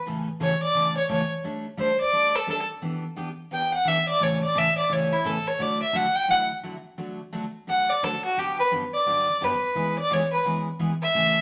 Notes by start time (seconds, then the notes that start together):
0.06 A2 C#3 E3 A3 C#4 A4
0.40 A2 C#3 E3 A3 C#4 A4 C#5
0.63 D5
0.74 A2 C#3 E3 A3 C#4 A4
0.97 C#5
1.09 A2 C#3 E3 A3 C#4 A4 C#5
1.44 G3 A3 D4 A4
1.77 G3 A3 D4 A4 C5
2.01 D5
2.13 G3 A3 D4 A4
2.36 A4
2.47 G3 A3 D4 A4
2.82 E3 B3 D4 G4
3.16 E3 B3 D4 G4
3.51 E3 B3 D4 G4 G5
3.74 F#5
3.85 E3 B3 D4 G4 E5
4.09 D5
4.20 A2 C#3 E3 A3 C#4 A4 C#5
4.43 D5
4.54 A2 C#3 E3 A3 C#4 A4 E5
4.78 D5
4.89 A2 C#3 E3 A3 C#4 A4 C#5
5.13 E4
5.24 A2 C#3 E3 A3 C#4 A4
5.48 C#5
5.59 D3 F#3 A3 E4 F#4 D5
5.82 E5
5.93 D3 F#3 A3 E4 F#4 F#5
6.16 G5
6.28 D3 F#3 A3 E4 F#4 F#5
6.63 D3 F#3 A3 E4 F#4
6.98 D3 F#3 A3 D4 F#4
7.33 D3 F#3 A3 D4 F#4
7.67 D3 F#3 A3 D4 F#4 F#5
7.90 D5
8.03 D3 F#3 A3 D4 F#4 A4
8.25 F#4
8.37 G2 D3 F#3 B3 D4 G4
8.60 B4
8.71 G2 D3 F#3 B3 D4 G4
8.95 D5
9.06 G2 D3 F#3 B3 D4 G4
9.41 G2 D3 F#3 B3 D4 G4 B4
9.75 E3 G#3 B3 E4 G#4
9.99 D5
10.10 E3 G#3 B3 E4 G#4 C#5
10.33 B4
10.45 E3 G#3 B3 E4 G#4
10.79 E3 G#3 B3 E4 G#4
11.03 E5
11.14 A2 C#3 E3 A3 C#4 A4